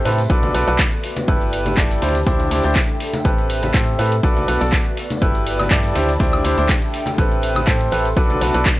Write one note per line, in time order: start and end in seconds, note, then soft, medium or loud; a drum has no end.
0.00 0.70 A4 medium
0.00 0.70 E5 medium
0.00 0.30 C6 medium
0.05 0.28 A2 loud
0.05 0.20 C4 medium
0.05 0.20 G4 medium
0.05 0.20 A4 medium
0.05 0.19 B4 medium
0.05 closed hi-hat medium
0.05 open hi-hat medium
0.05 high conga medium
0.19 closed hi-hat medium
0.19 tambourine medium
0.30 0.52 B1 loud
0.30 1.58 B3 medium
0.30 0.52 D4 loud
0.30 0.52 F#4 medium
0.30 0.52 A4 medium
0.30 0.52 B4 loud
0.30 kick loud
0.30 closed hi-hat medium
0.43 closed hi-hat soft
0.43 tambourine soft
0.43 high conga loud
0.54 0.65 B1 loud
0.54 0.64 D4 medium
0.54 0.64 F#4 medium
0.54 0.64 A4 medium
0.54 0.64 B4 medium
0.54 closed hi-hat medium
0.54 open hi-hat loud
0.65 0.78 B1 medium
0.65 0.80 D4 medium
0.65 1.28 F#4 medium
0.65 0.80 F#4 medium
0.65 0.80 A4 medium
0.65 0.80 B4 medium
0.65 closed hi-hat medium
0.65 tambourine medium
0.74 1.58 B4 medium
0.74 2.42 D5 medium
0.79 kick loud
0.79 snare loud
0.79 clap loud
0.79 closed hi-hat medium
0.79 tambourine medium
0.79 high conga medium
0.92 closed hi-hat soft
0.92 tambourine soft
1.03 closed hi-hat medium
1.03 open hi-hat medium
1.16 closed hi-hat medium
1.16 tambourine medium
1.16 high conga medium
1.28 1.75 G1 medium
1.28 1.75 E4 medium
1.28 1.75 G4 medium
1.28 2.42 G4 medium
1.28 1.75 A4 medium
1.28 1.75 B4 medium
1.28 kick loud
1.28 closed hi-hat medium
1.28 tambourine medium
1.41 closed hi-hat soft
1.41 tambourine soft
1.53 closed hi-hat medium
1.53 open hi-hat loud
1.62 2.42 A5 medium
1.62 2.42 B5 medium
1.62 closed hi-hat medium
1.62 high conga medium
1.66 tambourine medium
1.77 2.00 G1 loud
1.77 1.99 E4 medium
1.77 1.99 G4 medium
1.77 1.99 A4 medium
1.77 1.99 D5 medium
1.77 kick loud
1.77 snare loud
1.77 clap loud
1.77 closed hi-hat soft
1.77 closed hi-hat medium
1.77 tambourine medium
1.90 snare soft
1.90 closed hi-hat soft
1.90 tambourine soft
2.02 2.24 D2 loud
2.02 3.50 D4 medium
2.02 2.16 D4 medium
2.02 2.16 E4 medium
2.02 2.16 G4 medium
2.02 2.16 C5 medium
2.02 snare soft
2.02 open hi-hat medium
2.02 high conga medium
2.15 closed hi-hat soft
2.15 tambourine medium
2.25 2.49 D2 medium
2.25 2.48 D4 medium
2.25 2.48 E4 medium
2.25 2.48 G4 medium
2.25 2.48 C5 loud
2.25 4.63 E5 medium
2.25 kick loud
2.25 closed hi-hat medium
2.25 tambourine medium
2.39 4.63 A4 medium
2.39 closed hi-hat soft
2.39 tambourine soft
2.39 high conga medium
2.46 3.49 G5 medium
2.51 2.62 D2 loud
2.51 2.61 D4 medium
2.51 2.61 E4 medium
2.51 2.61 G4 medium
2.51 2.61 C5 medium
2.51 closed hi-hat medium
2.51 open hi-hat loud
2.63 2.75 D2 loud
2.63 2.77 D4 medium
2.63 2.77 E4 medium
2.63 2.77 G4 medium
2.63 2.77 C5 medium
2.63 closed hi-hat soft
2.63 tambourine medium
2.75 kick loud
2.75 snare loud
2.75 clap loud
2.75 closed hi-hat medium
2.75 closed hi-hat soft
2.75 tambourine medium
2.75 high conga medium
2.89 closed hi-hat soft
2.89 tambourine soft
3.00 closed hi-hat medium
3.00 open hi-hat loud
3.13 closed hi-hat soft
3.13 tambourine medium
3.13 high conga medium
3.25 3.72 A1 loud
3.25 3.71 C4 medium
3.25 3.71 G4 medium
3.25 3.71 A4 medium
3.25 3.71 B4 medium
3.25 kick loud
3.25 closed hi-hat soft
3.25 closed hi-hat medium
3.25 tambourine medium
3.38 closed hi-hat soft
3.38 tambourine soft
3.50 closed hi-hat medium
3.50 open hi-hat loud
3.62 closed hi-hat soft
3.62 tambourine medium
3.62 high conga medium
3.74 3.96 A2 medium
3.74 3.96 C4 medium
3.74 3.96 G4 medium
3.74 3.96 A4 medium
3.74 3.96 C5 medium
3.74 kick loud
3.74 snare loud
3.74 clap loud
3.74 closed hi-hat medium
3.74 closed hi-hat soft
3.74 tambourine medium
3.86 closed hi-hat soft
3.86 tambourine soft
3.99 4.21 A2 loud
3.99 4.13 C4 medium
3.99 4.13 G4 medium
3.99 4.13 A4 medium
3.99 4.13 B4 medium
3.99 closed hi-hat medium
3.99 open hi-hat medium
4.12 closed hi-hat soft
4.12 tambourine medium
4.23 4.46 B1 loud
4.23 5.52 B3 medium
4.23 4.45 D4 loud
4.23 4.45 F#4 medium
4.23 4.45 A4 medium
4.23 4.45 B4 loud
4.23 kick loud
4.23 closed hi-hat medium
4.23 closed hi-hat soft
4.23 tambourine medium
4.37 closed hi-hat soft
4.37 tambourine soft
4.37 high conga medium
4.48 4.58 B1 loud
4.48 4.59 D4 medium
4.48 4.59 F#4 medium
4.48 4.59 A4 medium
4.48 4.59 B4 medium
4.48 closed hi-hat medium
4.48 open hi-hat loud
4.61 4.80 B1 loud
4.61 4.82 D4 medium
4.61 4.82 F#4 medium
4.61 5.22 F#4 medium
4.61 4.82 A4 medium
4.61 4.82 D5 medium
4.61 closed hi-hat soft
4.61 tambourine medium
4.68 5.52 B4 medium
4.68 6.35 D5 medium
4.68 high conga medium
4.72 kick loud
4.72 snare loud
4.72 clap loud
4.72 closed hi-hat medium
4.72 closed hi-hat soft
4.72 tambourine medium
4.85 closed hi-hat soft
4.85 tambourine soft
4.97 closed hi-hat medium
4.97 open hi-hat medium
5.10 closed hi-hat soft
5.10 tambourine medium
5.10 high conga medium
5.21 5.69 G1 medium
5.21 5.68 E4 medium
5.21 6.35 G4 medium
5.21 5.68 G4 medium
5.21 5.68 A4 medium
5.21 5.68 B4 medium
5.21 kick loud
5.21 closed hi-hat soft
5.21 closed hi-hat medium
5.21 tambourine medium
5.35 closed hi-hat soft
5.35 tambourine soft
5.46 6.35 A5 medium
5.46 closed hi-hat medium
5.46 open hi-hat loud
5.53 6.36 B5 medium
5.59 closed hi-hat soft
5.59 tambourine medium
5.59 high conga medium
5.59 high woodblock medium
5.71 5.93 G2 medium
5.71 5.93 E4 medium
5.71 5.93 G4 medium
5.71 5.93 A4 medium
5.71 5.93 D5 medium
5.71 kick loud
5.71 snare loud
5.71 clap loud
5.71 closed hi-hat medium
5.71 closed hi-hat soft
5.71 tambourine medium
5.84 snare soft
5.84 closed hi-hat soft
5.84 tambourine soft
5.95 6.18 D2 loud
5.95 6.10 D4 medium
5.95 7.43 D4 medium
5.95 6.10 E4 medium
5.95 6.10 G4 medium
5.95 6.10 C5 medium
5.95 snare loud
5.95 closed hi-hat medium
5.95 open hi-hat medium
5.95 high conga medium
6.09 8.57 A4 medium
6.09 snare soft
6.09 closed hi-hat soft
6.09 tambourine medium
6.19 6.42 D2 loud
6.19 6.42 D4 loud
6.19 6.42 E4 medium
6.19 6.42 G4 medium
6.19 6.42 C5 loud
6.19 kick loud
6.19 snare soft
6.19 closed hi-hat soft
6.19 open hi-hat medium
6.19 tambourine medium
6.33 closed hi-hat soft
6.33 tambourine soft
6.33 high conga medium
6.33 high woodblock medium
6.40 8.57 E5 medium
6.40 7.43 G5 medium
6.44 6.55 D2 loud
6.44 6.55 D4 medium
6.44 6.54 E4 medium
6.44 6.55 G4 medium
6.44 6.54 C5 medium
6.44 closed hi-hat medium
6.44 open hi-hat loud
6.58 6.68 D2 loud
6.58 6.70 D4 medium
6.58 6.70 E4 medium
6.58 6.70 G4 medium
6.58 6.70 C5 medium
6.58 closed hi-hat medium
6.58 tambourine medium
6.69 kick loud
6.69 snare loud
6.69 clap loud
6.69 closed hi-hat medium
6.69 tambourine medium
6.69 high conga medium
6.82 closed hi-hat soft
6.82 tambourine soft
6.94 closed hi-hat medium
6.94 open hi-hat medium
7.06 closed hi-hat medium
7.06 tambourine medium
7.06 high conga medium
7.18 7.65 A1 medium
7.18 7.65 C4 medium
7.18 7.65 G4 medium
7.18 7.65 A4 medium
7.18 7.65 B4 medium
7.18 kick loud
7.18 closed hi-hat medium
7.18 tambourine medium
7.31 closed hi-hat soft
7.31 tambourine soft
7.42 closed hi-hat medium
7.42 open hi-hat loud
7.50 8.17 C6 medium
7.55 closed hi-hat medium
7.55 tambourine medium
7.55 high conga medium
7.55 high woodblock medium
7.67 7.90 A2 medium
7.67 7.89 C4 medium
7.67 7.89 G4 medium
7.67 7.89 A4 medium
7.67 7.89 C5 medium
7.67 kick loud
7.67 snare loud
7.67 clap loud
7.67 closed hi-hat medium
7.67 closed hi-hat soft
7.67 tambourine medium
7.81 closed hi-hat soft
7.81 tambourine soft
7.91 8.14 A1 loud
7.91 8.06 C4 medium
7.91 8.06 G4 medium
7.91 8.06 A4 medium
7.91 8.06 B4 medium
7.91 closed hi-hat medium
7.91 open hi-hat medium
8.05 closed hi-hat medium
8.05 tambourine medium
8.16 8.39 B1 loud
8.16 8.80 B3 medium
8.16 8.39 D4 loud
8.16 8.39 F#4 medium
8.16 8.39 A4 medium
8.16 8.39 B4 loud
8.16 kick loud
8.16 closed hi-hat medium
8.16 tambourine medium
8.30 8.80 B4 medium
8.30 closed hi-hat soft
8.30 tambourine soft
8.30 high conga medium
8.41 8.52 B1 medium
8.41 8.51 D4 medium
8.41 8.51 F#4 medium
8.41 8.51 A4 medium
8.41 8.51 B4 medium
8.41 closed hi-hat medium
8.41 open hi-hat loud
8.54 8.65 B1 loud
8.54 8.67 D4 medium
8.54 8.67 F#4 medium
8.54 8.80 F#4 medium
8.54 8.67 A4 medium
8.54 8.67 B4 medium
8.54 closed hi-hat medium
8.54 tambourine medium
8.62 8.80 D5 medium
8.62 snare loud
8.62 closed hi-hat medium
8.66 kick loud
8.66 clap loud
8.66 closed hi-hat medium
8.66 tambourine medium
8.66 high conga medium